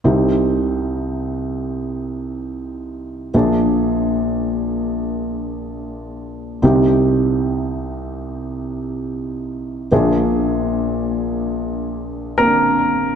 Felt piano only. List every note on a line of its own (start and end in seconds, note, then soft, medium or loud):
0.04 3.30 C2 soft
0.04 3.30 C3 soft
0.04 3.29 C4 soft
0.04 3.30 D#4 soft
0.04 3.30 G4 soft
3.34 6.59 A#1 soft
3.34 6.59 A#2 soft
3.34 6.59 A#3 soft
3.34 6.59 D4 soft
3.34 6.59 G#4 medium
6.62 9.87 C2 soft
6.62 9.88 C3 soft
6.62 9.87 C4 medium
6.62 9.88 D#4 soft
6.62 9.88 G4 medium
9.92 13.15 A#1 soft
9.92 13.15 A#2 medium
9.92 12.34 A#3 medium
9.92 12.34 D4 soft
9.92 12.35 G#4 medium
12.38 13.15 A#3 soft
12.38 12.45 C4 soft
12.38 13.15 A#4 soft
12.45 13.15 D4 soft